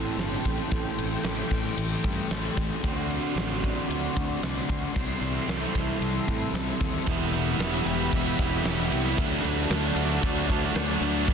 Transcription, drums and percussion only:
0.19 snare, ride
0.45 kick, ride
0.71 kick, ride
0.98 ride
1.24 snare, ride
1.51 kick, ride
1.65 snare
1.78 ride
2.04 kick, ride
2.31 snare, ride
2.57 kick, ride
2.84 kick, ride
3.10 ride
3.37 snare, ride
3.64 kick, ride
3.90 ride
4.17 kick, ride
4.43 snare, ride
4.69 kick, ride
4.96 kick, ride
5.22 ride
5.49 snare, ride
5.75 kick, ride
6.02 ride
6.28 kick, ride
6.55 snare, ride
6.80 kick, ride
7.07 kick, ride
7.34 ride
7.60 snare, ride, tambourine
7.86 ride
8.12 kick, ride
8.39 kick, ride
8.65 snare, ride, tambourine
8.92 ride
9.06 snare
9.18 kick, ride
9.44 ride
9.71 snare, ride, tambourine
9.96 ride
10.23 kick, ride
10.50 kick, ride
10.76 snare, ride, tambourine
11.02 ride
11.28 kick, ride

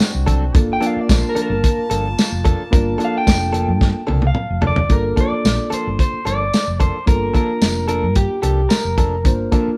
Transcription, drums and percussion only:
0.00 snare, closed hi-hat, tambourine
0.28 kick, closed hi-hat
0.55 kick, closed hi-hat
0.82 closed hi-hat
1.09 kick, snare, closed hi-hat, tambourine
1.36 closed hi-hat
1.64 kick, closed hi-hat
1.91 closed hi-hat
2.18 snare, closed hi-hat, tambourine
2.45 kick, closed hi-hat
2.73 kick, closed hi-hat
3.00 closed hi-hat
3.27 kick, snare, closed hi-hat, tambourine
3.54 closed hi-hat
3.81 kick, snare
4.08 high tom
4.22 high tom
4.35 mid tom
4.62 floor tom
4.76 floor tom
4.90 kick, closed hi-hat
5.17 kick, closed hi-hat
5.45 snare, closed hi-hat, tambourine
5.72 closed hi-hat
5.99 kick, closed hi-hat
6.27 closed hi-hat
6.54 snare, closed hi-hat, tambourine
6.80 kick, closed hi-hat
7.07 kick, closed hi-hat
7.35 kick, closed hi-hat
7.62 snare, closed hi-hat, tambourine
7.88 closed hi-hat
8.15 kick, closed hi-hat
8.43 closed hi-hat
8.70 snare, closed hi-hat, tambourine
8.98 kick, closed hi-hat
9.25 kick, closed hi-hat
9.52 kick, closed hi-hat

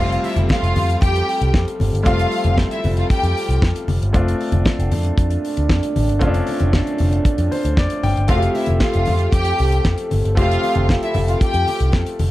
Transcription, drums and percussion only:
0.12 closed hi-hat
0.24 open hi-hat, muted conga
0.36 closed hi-hat, high conga
0.49 kick, snare, muted conga
0.64 closed hi-hat
0.76 open hi-hat, high conga, low conga
0.89 closed hi-hat
1.01 kick, closed hi-hat, muted conga
1.16 closed hi-hat
1.29 open hi-hat
1.42 closed hi-hat
1.54 kick, snare
1.68 closed hi-hat
1.80 open hi-hat, muted conga, high conga
1.95 closed hi-hat
2.06 kick, closed hi-hat, low conga
2.19 closed hi-hat
2.32 open hi-hat
2.44 closed hi-hat, high conga
2.58 kick, snare, muted conga
2.71 closed hi-hat
2.84 open hi-hat, high conga, low conga
2.97 closed hi-hat
3.10 kick, closed hi-hat, muted conga
3.23 closed hi-hat
3.37 open hi-hat
3.51 closed hi-hat
3.62 kick, snare
3.76 closed hi-hat
3.88 open hi-hat, muted conga, high conga
4.02 closed hi-hat
4.14 kick, closed hi-hat, muted conga, low conga
4.28 closed hi-hat
4.41 open hi-hat
4.52 closed hi-hat, high conga
4.65 kick, snare, muted conga
4.80 closed hi-hat
4.91 open hi-hat, muted conga, high conga, low conga
5.05 closed hi-hat
5.18 kick, closed hi-hat
5.30 closed hi-hat
5.45 open hi-hat
5.57 closed hi-hat
5.70 kick, snare
5.83 closed hi-hat
5.96 open hi-hat, high conga
6.09 closed hi-hat
6.21 kick, closed hi-hat, low conga
6.34 closed hi-hat
6.47 open hi-hat, muted conga
6.60 closed hi-hat, high conga
6.73 kick, snare, muted conga, high conga
6.87 closed hi-hat
6.98 open hi-hat, high conga, low conga
7.13 closed hi-hat
7.25 kick, closed hi-hat, muted conga
7.38 closed hi-hat
7.52 open hi-hat, muted conga
7.65 closed hi-hat
7.77 kick, snare, muted conga
7.90 closed hi-hat
8.03 open hi-hat, high conga
8.17 closed hi-hat
8.28 kick, closed hi-hat, muted conga, low conga
8.42 closed hi-hat
8.55 open hi-hat, muted conga
8.66 closed hi-hat, high conga
8.80 kick, snare, muted conga
8.94 closed hi-hat
9.05 open hi-hat, muted conga, high conga, low conga
9.19 closed hi-hat
9.32 kick, closed hi-hat, muted conga
9.45 closed hi-hat
9.59 open hi-hat
9.72 closed hi-hat
9.85 kick, snare, muted conga
9.98 closed hi-hat
10.11 open hi-hat, high conga
10.25 closed hi-hat
10.37 kick, closed hi-hat, low conga
10.51 closed hi-hat
10.63 open hi-hat, muted conga
10.75 closed hi-hat, high conga
10.89 kick, snare
11.03 closed hi-hat
11.14 open hi-hat, high conga, low conga
11.28 closed hi-hat
11.41 kick, closed hi-hat
11.54 closed hi-hat
11.67 open hi-hat, muted conga
11.80 closed hi-hat
11.92 kick, snare, muted conga
12.06 closed hi-hat
12.19 open hi-hat, muted conga, high conga

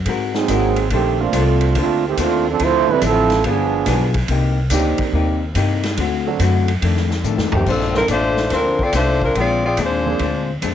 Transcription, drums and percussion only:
0.06 kick, ride
0.34 snare
0.48 kick, hi-hat pedal, ride
0.76 ride
0.90 kick, ride
1.33 kick, hi-hat pedal, ride
1.61 ride
1.75 kick, ride
2.17 kick, hi-hat pedal, ride
2.59 kick, ride
3.02 kick, hi-hat pedal, ride
3.30 snare, ride
3.44 kick, ride
3.86 kick, snare, hi-hat pedal, ride
4.14 kick, ride
4.28 kick, ride
4.70 kick, hi-hat pedal, ride
4.98 kick, ride
5.13 kick
5.55 kick, hi-hat pedal, ride
5.83 snare, ride
5.97 kick, ride
6.39 kick, hi-hat pedal, ride
6.68 ride
6.82 kick, ride
6.97 snare
7.10 snare
7.24 hi-hat pedal
7.38 snare
7.52 floor tom
7.66 kick, crash
7.80 snare
7.94 snare
8.08 kick, hi-hat pedal, ride
8.37 snare
8.50 kick, snare, ride
8.79 kick
8.93 kick, snare, hi-hat pedal, ride
9.22 kick
9.35 kick, ride
9.77 kick, hi-hat pedal, ride
10.19 kick, ride
10.62 kick, hi-hat pedal, ride

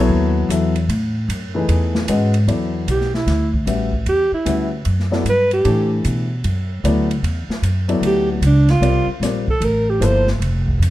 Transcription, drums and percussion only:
0.50 hi-hat pedal, ride
0.76 ride
0.89 ride
1.30 hi-hat pedal, ride
1.69 ride
1.95 snare
2.08 hi-hat pedal, ride
2.34 ride
2.48 ride
2.88 hi-hat pedal, ride
3.01 snare
3.14 snare
3.28 snare, ride
3.54 kick
3.67 hi-hat pedal, ride
3.93 kick
4.06 ride
4.46 hi-hat pedal, ride
4.85 ride
4.99 snare
5.13 snare
5.26 hi-hat pedal, ride
5.51 ride
5.65 ride
6.05 hi-hat pedal, ride
6.44 ride
6.85 hi-hat pedal, ride
7.11 ride
7.24 ride
7.50 snare
7.63 hi-hat pedal, ride
7.89 ride
8.03 ride
8.42 hi-hat pedal, ride
8.69 snare, ride
8.83 ride
9.23 snare, hi-hat pedal, ride
9.48 kick
9.62 ride
10.02 hi-hat pedal, ride
10.27 snare
10.42 ride
10.68 kick
10.82 hi-hat pedal, ride

